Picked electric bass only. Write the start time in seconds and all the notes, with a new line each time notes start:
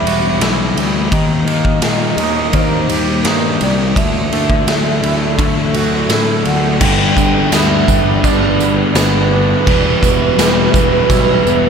0.03 E1
0.39 B1
0.74 D2
1.11 D#2
1.45 D#2
1.81 A#2
2.17 D#2
2.53 D#2
2.89 D#2
3.25 G2
3.61 C2
3.96 D2
4.32 D2
4.66 D2
5.03 D2
5.38 D3
5.74 D2
6.09 A2
6.46 D2
6.81 G1
7.17 G1
7.52 D2
7.88 G1
8.24 G1
8.95 G1
9.67 E1
10.03 E1
10.38 E1
10.74 E1
11.09 B1
11.45 E1